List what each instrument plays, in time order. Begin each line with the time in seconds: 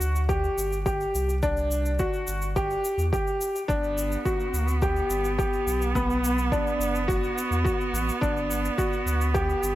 Already playing: felt piano F#4
0.00 sub bass D2, shaker
0.15 shaker
0.29 felt piano G4, kick, shaker
0.44 shaker
0.58 sub bass G1, shaker
0.72 shaker
0.86 felt piano G4, kick, shaker
1.01 shaker
1.15 sub bass C2, shaker
1.29 shaker
1.43 felt piano D4, kick, shaker
1.57 shaker
1.71 shaker
1.85 shaker
1.99 felt piano F#4, kick, shaker
2.13 shaker
2.27 sub bass G1, shaker
2.42 shaker
2.56 felt piano G4, kick, shaker
2.70 shaker
2.84 shaker
2.98 sub bass E2, shaker
3.13 felt piano G4, kick, shaker
3.27 shaker
3.41 shaker
3.55 shaker
3.68 sub bass G1, string quartet B3, felt piano D4, kick, shaker
3.84 shaker
3.98 shaker
4.12 shaker
4.25 felt piano F#4, kick, shaker
4.40 shaker
4.53 sub bass D2, shaker
4.68 shaker
4.82 felt piano G4, kick, shaker
4.96 shaker
5.10 sub bass G1, shaker
5.24 shaker
5.38 felt piano G4, kick, shaker
5.53 shaker
5.67 sub bass B1, shaker
5.82 shaker
5.95 felt piano B3, kick, shaker
6.10 shaker
6.24 shaker
6.38 shaker
6.52 felt piano D4, kick, shaker
6.67 shaker
6.79 sub bass F#1, shaker
6.95 shaker
7.08 felt piano F#4, kick, shaker
7.24 shaker
7.38 shaker
7.51 sub bass E2, shaker
7.64 felt piano F#4, kick, shaker
7.81 shaker
7.93 sub bass A1, shaker
8.09 shaker
8.21 sub bass G1, felt piano D4, kick, shaker
8.37 shaker
8.51 shaker
8.65 shaker
8.78 felt piano F#4, kick, shaker
8.93 shaker
9.06 sub bass D2, shaker
9.21 shaker
9.34 felt piano G4, kick, shaker
9.50 shaker
9.63 sub bass G1, shaker